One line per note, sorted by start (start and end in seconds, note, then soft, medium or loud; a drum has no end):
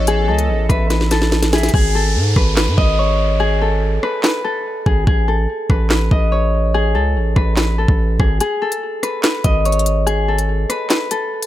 0.00 0.29 A1 loud
0.00 1.70 E3 medium
0.00 1.70 B3 medium
0.00 0.14 A4 medium
0.00 1.70 A4 loud
0.00 0.69 B4 medium
0.00 1.56 C#5 medium
0.00 1.23 D#5 medium
0.07 0.34 G#4 loud
0.07 closed hi-hat medium
0.28 0.50 C#2 loud
0.28 1.11 A4 medium
0.28 0.67 D#5 medium
0.39 closed hi-hat medium
0.49 0.69 A1 loud
0.69 1.70 A1 loud
0.69 0.90 B4 medium
0.69 0.89 E5 medium
0.69 kick loud
0.69 cross-stick medium
0.69 closed hi-hat medium
0.90 2.36 B4 medium
0.90 snare medium
0.90 closed hi-hat medium
1.01 snare medium
1.11 1.59 A4 medium
1.11 snare medium
1.11 closed hi-hat medium
1.22 snare medium
1.32 snare medium
1.43 snare medium
1.43 closed hi-hat medium
1.53 1.74 G#4 medium
1.53 1.73 E5 medium
1.53 snare loud
1.53 closed hi-hat medium
1.58 closed hi-hat medium
1.63 snare medium
1.63 closed hi-hat medium
1.69 closed hi-hat medium
1.74 2.17 G#1 loud
1.74 2.01 G#4 loud
1.74 kick loud
1.74 downlifter medium
1.95 3.46 A4 medium
2.15 2.35 G#2 loud
2.36 2.69 G#1 loud
2.36 2.57 B4 medium
2.36 kick loud
2.36 cross-stick medium
2.56 4.03 B4 medium
2.56 snare loud
2.56 clap medium
2.68 2.77 G#2 loud
2.78 3.99 G#1 loud
2.78 4.56 D#5 medium
2.78 kick loud
2.99 4.90 C#5 medium
3.40 3.68 G#4 loud
3.62 4.44 A4 medium
4.03 4.24 B4 medium
4.03 cross-stick medium
4.23 5.69 B4 medium
4.23 snare loud
4.23 clap medium
4.44 4.92 A4 medium
4.86 5.06 G#1 loud
4.86 5.07 G#4 medium
4.86 kick loud
5.07 5.47 A1 loud
5.07 5.34 G#4 loud
5.07 kick loud
5.28 6.80 A4 medium
5.70 6.10 A1 loud
5.70 5.90 B4 medium
5.70 kick loud
5.70 cross-stick medium
5.90 7.36 B4 medium
5.90 snare loud
5.90 clap medium
6.11 6.96 A1 loud
6.11 7.90 D#5 medium
6.11 kick loud
6.32 8.23 C#5 medium
6.74 7.01 G#4 loud
6.95 7.17 C#2 loud
6.95 7.78 A4 medium
7.16 7.35 A1 loud
7.36 7.86 A1 loud
7.36 7.56 B4 medium
7.36 kick loud
7.36 cross-stick medium
7.56 9.02 B4 medium
7.56 snare loud
7.56 clap medium
7.78 8.25 A4 medium
7.88 8.18 A1 loud
7.88 kick loud
8.20 8.40 G#1 loud
8.20 8.40 G#4 medium
8.20 kick loud
8.20 cross-stick medium
8.41 8.68 G#4 loud
8.41 closed hi-hat medium
8.62 10.13 A4 medium
8.72 closed hi-hat medium
9.03 9.23 B4 medium
9.03 cross-stick medium
9.03 closed hi-hat medium
9.23 10.70 B4 medium
9.23 snare loud
9.23 clap medium
9.23 closed hi-hat medium
9.44 10.66 G#1 loud
9.44 11.23 D#5 medium
9.44 kick loud
9.44 closed hi-hat medium
9.65 11.46 C#5 medium
9.65 closed hi-hat medium
9.72 closed hi-hat medium
9.79 closed hi-hat medium
9.86 closed hi-hat medium
10.07 10.34 G#4 loud
10.07 closed hi-hat medium
10.28 11.11 A4 medium
10.38 closed hi-hat medium
10.70 10.90 B4 medium
10.70 cross-stick medium
10.70 closed hi-hat medium
10.90 11.46 B4 medium
10.90 snare loud
10.90 clap medium
10.90 closed hi-hat medium
11.11 11.46 A4 medium
11.11 closed hi-hat medium
11.43 closed hi-hat medium